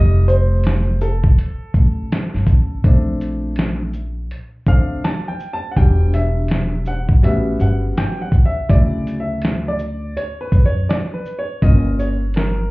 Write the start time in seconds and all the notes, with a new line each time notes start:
Already playing: F1 G3 A3 D#4 D#5
0.28 C5, shaker
0.64 snare, closed hi-hat
1.01 A4, shaker
1.24 kick
1.39 closed hi-hat
1.74 A1, kick, shaker
2.12 snare, closed hi-hat
2.34 G1, snare
2.47 A1, kick, closed hi-hat, shaker
2.84 A#1 A3 C4 D4, kick, closed hi-hat
3.21 closed hi-hat, shaker
3.56 snare, closed hi-hat
3.93 shaker
4.31 closed hi-hat
4.67 D2 A3 C4 D4 F5, kick, shaker
5.04 A5, snare, closed hi-hat
5.28 G5
5.40 shaker
5.53 A5
5.71 F#5
5.76 E1 F#3 G3 D4 G5, kick, closed hi-hat
6.14 E5, closed hi-hat, shaker
6.48 snare, closed hi-hat
6.86 F#5, shaker
7.09 kick
7.23 A1 G3 B3 C#4 F#4 E5, closed hi-hat
7.60 G1 F#5, shaker
7.97 G5, snare, closed hi-hat
8.22 F#5
8.32 kick, shaker
8.46 E5
8.69 D2 C#3 F#3 E4 D5, kick, closed hi-hat
9.07 closed hi-hat, shaker
9.20 E5
9.42 snare, closed hi-hat
9.68 D5
9.79 shaker
10.17 C#5, closed hi-hat
10.41 B4
10.52 F#2, kick, shaker
10.66 C#5
10.89 D5, snare, closed hi-hat
11.14 B4
11.26 shaker
11.39 C#5
11.62 G1 A#3 C#4 F4 D#5, kick, closed hi-hat
11.99 C#5, shaker
12.34 A#4, snare, closed hi-hat